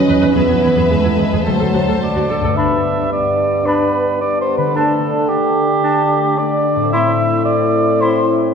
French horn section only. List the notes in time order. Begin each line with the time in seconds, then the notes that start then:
Already playing: C#4
0.35 B3
0.91 A3
1.18 G#3
1.47 F#3
2.57 B3 D4
3.11 B3 D4
3.65 B3 D4
4.21 B3 D4
4.75 A3 D4
5.31 A3 D4
6.38 A3 D4
6.94 C4 E4
8.02 C4 E4